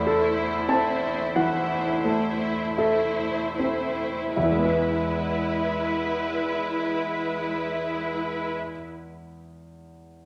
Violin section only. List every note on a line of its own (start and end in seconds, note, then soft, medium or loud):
0.06 0.66 E4 soft
0.06 0.67 C5 soft
0.67 1.32 E4 soft
0.67 1.32 C5 soft
1.34 2.02 E4 soft
1.34 2.02 C5 soft
2.03 2.75 E4 soft
2.03 2.75 C5 soft
2.76 3.55 E4 soft
2.76 3.54 C5 soft
3.56 4.34 E4 soft
3.56 4.34 C5 soft
4.36 8.54 E4 soft
4.36 8.53 B4 soft